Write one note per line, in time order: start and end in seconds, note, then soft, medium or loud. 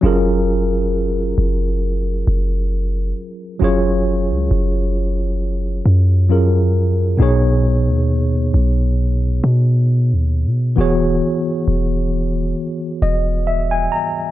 0.01 1.34 F#1 loud
0.01 3.56 F#3 medium
0.01 3.57 C#4 medium
0.01 3.58 F4 medium
0.01 3.58 G#4 medium
0.06 3.59 A#4 medium
1.38 2.24 F#1 loud
2.27 3.13 F#1 loud
3.59 4.32 F#1 medium
3.59 6.25 F#3 medium
3.59 6.26 C#4 medium
3.59 6.26 F4 medium
3.59 6.27 G#4 medium
3.64 6.28 C#5 medium
4.31 4.50 C#2 medium
4.51 5.81 F#1 loud
5.86 7.16 F#2 loud
6.29 7.19 F#3 medium
6.29 7.20 C#4 soft
6.29 7.20 F4 medium
6.29 7.20 G#4 soft
6.29 7.21 A#4 medium
7.17 7.90 B1 medium
7.17 10.73 B2 medium
7.17 10.73 B3 medium
7.17 10.74 D#4 medium
7.17 10.75 G#4 medium
7.22 10.75 C#5 medium
7.89 8.51 D#2 medium
8.54 9.40 B1 loud
9.44 10.14 B2 loud
10.13 10.47 D#2 loud
10.45 10.76 B2 medium
10.76 11.21 E1 loud
10.76 14.31 E3 medium
10.76 14.31 B3 medium
10.76 14.31 F#4 medium
10.76 14.31 G#4 medium
10.81 14.31 C#5 medium
11.68 12.54 E1 loud
13.02 13.88 E1 loud
13.02 13.44 D#5 medium
13.47 13.69 E5 medium
13.71 13.90 G#5 medium
13.92 14.31 A#5 medium